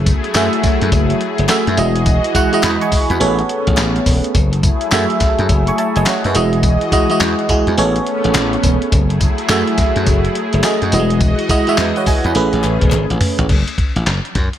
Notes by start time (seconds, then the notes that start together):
Already playing: F#1 F#3 A3 E4 G#4
0.06 kick, closed hi-hat, tambourine
0.24 closed hi-hat
0.35 F#2 A3 F#4 G#4 E5, snare, clap, closed hi-hat, tambourine
0.53 closed hi-hat
0.63 muted slap bass stroke, kick, snare, closed hi-hat, tambourine
0.81 F#2, closed hi-hat
0.92 F#1, kick, closed hi-hat, tambourine
1.10 closed hi-hat
1.21 closed hi-hat
1.38 F#1, closed hi-hat
1.49 A3 F#4 G#4 E5, snare, clap, closed hi-hat, tambourine
1.67 F#2, closed hi-hat
1.77 E1 E3 G#3 E4 F#4 D#5, closed hi-hat, tambourine
1.96 closed hi-hat
2.06 kick, closed hi-hat, tambourine
2.24 closed hi-hat
2.35 G#3 E4 F#4 F#5, kick, closed hi-hat, tambourine
2.53 G#3 E4 F#4 D#5, closed hi-hat
2.63 E2 F#5 B5, snare, clap, closed hi-hat, tambourine
2.81 G#5 C#6, closed hi-hat
2.92 muted slap bass stroke, kick, open hi-hat, tambourine
3.10 E2 F#5 B5, closed hi-hat
3.20 A1 A3 B3 C#4 G#4 A4 C#5, closed hi-hat, tambourine
3.39 closed hi-hat
3.49 closed hi-hat
3.67 A1, kick, closed hi-hat
3.77 A1, snare, clap, closed hi-hat, tambourine
3.96 closed hi-hat
4.06 E1, kick, open hi-hat, tambourine
4.24 closed hi-hat
4.35 F#1 F#3 A3 E4 G#4, kick, closed hi-hat, tambourine
4.53 closed hi-hat
4.63 kick, closed hi-hat, tambourine
4.81 closed hi-hat
4.92 F#2 A3 F#4 G#4 E5, snare, clap, closed hi-hat, tambourine
5.10 closed hi-hat
5.20 muted slap bass stroke, kick, snare, closed hi-hat, tambourine
5.39 F#2, closed hi-hat
5.49 F#1, kick, closed hi-hat, tambourine
5.67 G#5 C#6, closed hi-hat
5.78 E5 A5, closed hi-hat
5.96 F#1 D#5 G#5, closed hi-hat
6.06 C#5 F#5, snare, clap, closed hi-hat, tambourine
6.24 F#2 B4 E5, closed hi-hat
6.35 E1 E3 G#3 E4 F#4 D#5, closed hi-hat, tambourine
6.53 closed hi-hat
6.63 kick, closed hi-hat, tambourine
6.81 closed hi-hat
6.92 G#3 E4 F#4 D#5, kick, closed hi-hat, tambourine
7.10 G#3 E4 F#4 D#5, closed hi-hat
7.21 E2, snare, clap, closed hi-hat, tambourine
7.39 closed hi-hat
7.49 G#3 E4 F#4 G#4, muted slap bass stroke, kick, closed hi-hat, tambourine
7.67 E2, closed hi-hat
7.77 A1 A3 B3 C#4 G#4 A4 C#5, closed hi-hat, tambourine
7.96 closed hi-hat
8.07 closed hi-hat
8.24 A1, closed hi-hat
8.35 A1, snare, clap, closed hi-hat, tambourine
8.53 closed hi-hat
8.63 E1, kick, closed hi-hat, tambourine
8.82 closed hi-hat
8.92 F#1 F#3 A3 E4 G#4, kick, closed hi-hat, tambourine
9.10 closed hi-hat
9.21 kick, closed hi-hat, tambourine
9.38 closed hi-hat
9.49 F#2 A3 F#4 G#4 E5, snare, clap, closed hi-hat, tambourine
9.67 closed hi-hat
9.78 muted slap bass stroke, kick, snare, closed hi-hat, tambourine
9.96 F#2, closed hi-hat
10.06 F#1, kick, closed hi-hat, tambourine
10.25 closed hi-hat
10.35 closed hi-hat
10.53 F#1, closed hi-hat
10.63 A3 F#4 G#4 D#5, snare, clap, closed hi-hat, tambourine
10.82 F#2, closed hi-hat
10.92 E1 E3 G3 E4 F#4 D#5, closed hi-hat, tambourine
10.99 G#3
11.10 closed hi-hat
11.21 kick, closed hi-hat, tambourine
11.39 closed hi-hat
11.49 G#3 E4 F#4 D#5, kick, closed hi-hat, tambourine
11.67 G#3 E4 F#4 E5, closed hi-hat
11.78 E2 B4 E5, snare, clap, closed hi-hat, tambourine
11.96 C#5 F#5, closed hi-hat
12.06 D#5 G#5, muted slap bass stroke, kick, open hi-hat, tambourine
12.24 E2 F#5 B5, closed hi-hat
12.35 A1 A3 C#4 G#4 B4, closed hi-hat, tambourine
12.53 A1, closed hi-hat
12.64 A1, clap, closed hi-hat
12.81 E1, kick, closed hi-hat
12.92 G#1, clap, closed hi-hat, high tom
13.10 A1, closed hi-hat
13.21 mid tom, open hi-hat
13.39 A1, closed hi-hat, floor tom
13.49 F#1, kick, closed hi-hat, crash
13.68 closed hi-hat
13.78 kick, closed hi-hat
13.96 A1, closed hi-hat
14.06 F#1, snare, clap, closed hi-hat
14.25 closed hi-hat
14.35 F#2, kick, snare, closed hi-hat
14.53 closed hi-hat